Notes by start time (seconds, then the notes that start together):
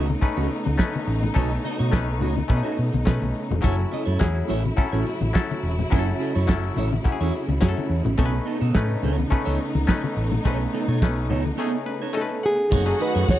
Already playing: C#2 C#3 A3 B3 D#4
0.08 muted clean electric guitar stroke, closed hi-hat, high conga
0.21 A3 C#4 D#4 B4, muted clean electric guitar stroke, kick, closed hi-hat
0.37 C#2 A3 D#4 F#4 C#5, closed hi-hat
0.50 muted clean electric guitar stroke, open hi-hat, muted conga
0.65 C#2, muted clean electric guitar stroke, closed hi-hat, high conga
0.78 A3 C#4 D#4 B4, muted clean electric guitar stroke, kick, snare, closed hi-hat
0.94 muted clean electric guitar stroke, closed hi-hat, high conga
1.07 A1, open hi-hat
1.22 muted clean electric guitar stroke, closed hi-hat, low conga
1.34 B1 A3 C#4 D#4 F#4 A4 C#5, kick, closed hi-hat, low conga
1.50 muted clean electric guitar stroke, closed hi-hat
1.64 A3 D#4 F#4 D#5, open hi-hat, muted conga
1.79 B2 A3 D#4 F#4 C#5, closed hi-hat
1.91 B1 A3 C#4 D#4 B4, kick, snare, closed hi-hat, muted conga
2.08 muted clean electric guitar stroke, closed hi-hat
2.20 C#2 A3 D#4 F#4 C#5, open hi-hat, muted conga, low conga
2.36 closed hi-hat, high conga
2.48 B2 A3 C#4 D4 B4, muted clean electric guitar stroke, kick, closed hi-hat, muted conga
2.56 D#4
2.63 A3 D#4 F#4 C#5, closed hi-hat
2.77 B2, muted clean electric guitar stroke, open hi-hat
2.92 B1, muted clean electric guitar stroke, closed hi-hat, high conga
3.05 B2 A3 C#4 D#4 B4, muted clean electric guitar stroke, kick, snare, closed hi-hat, muted conga
3.21 B1, muted clean electric guitar stroke, closed hi-hat, high conga
3.36 open hi-hat
3.49 E1, muted clean electric guitar stroke, closed hi-hat, low conga
3.62 F#1 C#3 F#3 C#4 E4 A4 C#5, kick, closed hi-hat, muted conga, low conga
3.77 muted clean electric guitar stroke, closed hi-hat
3.92 C#4 E4 A4 D#5, open hi-hat, muted conga
4.05 F#2 C#4 E4 A4 C#5, closed hi-hat
4.19 E2 F#3 C#4 E4 G#4, kick, snare, closed hi-hat
4.35 muted clean electric guitar stroke, closed hi-hat
4.48 A1 C#4 E4 A4 C#5, open hi-hat, muted conga, low conga
4.64 muted clean electric guitar stroke, closed hi-hat, high conga
4.77 F#3 C#4 E4 A4, muted clean electric guitar stroke, kick, closed hi-hat, muted conga
4.92 A1 C#4 E4 A4 C#5, closed hi-hat
5.06 muted clean electric guitar stroke, open hi-hat, muted conga
5.21 A1, muted clean electric guitar stroke, closed hi-hat, high conga
5.33 F#3 C#4 E4 A4, muted clean electric guitar stroke, kick, snare, closed hi-hat
5.50 muted clean electric guitar stroke, closed hi-hat, high conga
5.63 E1, open hi-hat
5.78 muted clean electric guitar stroke, closed hi-hat, low conga
5.90 F#1 F#3 C#4 E4 G#4 A4 C#5, kick, closed hi-hat, low conga
5.99 A4
6.07 muted clean electric guitar stroke, closed hi-hat
6.20 C#4 E4 A4 D#5, open hi-hat
6.35 F#2 C#4 E4 A4 C#5, closed hi-hat
6.47 F#1 F#3 C#4 E4 A4, kick, snare, closed hi-hat, muted conga
6.64 muted clean electric guitar stroke, closed hi-hat
6.76 A1 C#4 E4 A4 C#5, open hi-hat, muted conga, low conga
6.92 muted clean electric guitar stroke, closed hi-hat, high conga
7.04 F#3 C#4 E4 G4, muted clean electric guitar stroke, kick, closed hi-hat, muted conga
7.12 G#4
7.21 E2 C#4 E4 A4 C#5, closed hi-hat
7.34 muted clean electric guitar stroke, open hi-hat
7.48 C#2, muted clean electric guitar stroke, closed hi-hat, high conga
7.61 F#2 F#3 C#4 E4 G#4, muted clean electric guitar stroke, kick, snare, closed hi-hat, muted conga
7.69 A4
7.77 muted clean electric guitar stroke, closed hi-hat, high conga
7.90 E2, open hi-hat
8.05 A1, muted clean electric guitar stroke, closed hi-hat, low conga
8.17 B1 A3 B3 C#4 D#4 A4 C#5, kick, closed hi-hat, low conga
8.26 B4
8.32 muted clean electric guitar stroke, closed hi-hat
8.45 B3 D#4 A4 D#5, open hi-hat
8.60 B2 B3 D#4 A4 C#5, closed hi-hat
8.74 A2 A3 C#4 D#4 B4, kick, snare, closed hi-hat
8.89 muted clean electric guitar stroke, closed hi-hat
9.02 C#2 B3 D#4 A4 C#5, open hi-hat, muted conga, low conga
9.18 muted clean electric guitar stroke, closed hi-hat, high conga
9.30 A3 C#4 D#4 B4, muted clean electric guitar stroke, kick, closed hi-hat, muted conga
9.45 C#2 B3 D#4 A4 C#5, closed hi-hat
9.60 muted clean electric guitar stroke, open hi-hat
9.75 C#2, muted clean electric guitar stroke, closed hi-hat, high conga
9.87 A3 C#4 D#4 B4, muted clean electric guitar stroke, kick, snare, closed hi-hat
10.02 muted clean electric guitar stroke, closed hi-hat, high conga
10.16 A1, open hi-hat
10.31 muted clean electric guitar stroke, closed hi-hat, low conga
10.44 B1 A3 B3 C#4 D#4 A4 B4 C#5, kick, closed hi-hat, muted conga, low conga
10.60 muted clean electric guitar stroke, closed hi-hat
10.73 B3 D#4 A4 D#5, open hi-hat, muted conga
10.88 B2 B3 D#4 A4 C#5, closed hi-hat
11.02 B1 A3 C#4 D#4 B4, kick, snare, closed hi-hat
11.16 muted clean electric guitar stroke, closed hi-hat
11.29 C#2 B3 D#4 A4 C#5, open hi-hat, low conga
11.44 muted clean electric guitar stroke, closed hi-hat, high conga
11.57 A3 B3 C#4 D#4 G#4 A4 C#5
11.73 muted clean electric guitar stroke
11.86 B4, muted clean electric guitar stroke
12.02 B3 D#4 A4 C#5
12.13 A3 C#4 D#4 A4 D#5, muted clean electric guitar stroke
12.17 A4
12.21 B4
12.29 muted clean electric guitar stroke
12.43 G#4 F#5
12.57 muted clean electric guitar stroke
12.70 F#1 D#3 A3 D#4 F#4 G#4 C#5 F#5, kick, crash, low conga
12.86 F#3 A3 C#4 D#4 G#4, muted clean electric guitar stroke, closed hi-hat
12.99 A3 D#4 G#4 B4 D#5, open hi-hat
13.15 F#2 A3 D#4 G#4 C#5, closed hi-hat
13.29 D#2 C#5, kick, snare, closed hi-hat